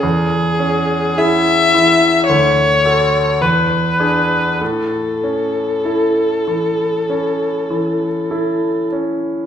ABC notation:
X:1
M:4/4
L:1/8
Q:1/4=50
K:A
V:1 name="Viola"
G2 e2 c2 B2 | A6- A z |]
V:2 name="Grand piano"
E,, C [EG] E, D,, [FA] E,, [DG] | A,, C [EA] E, C E, [EA] C |]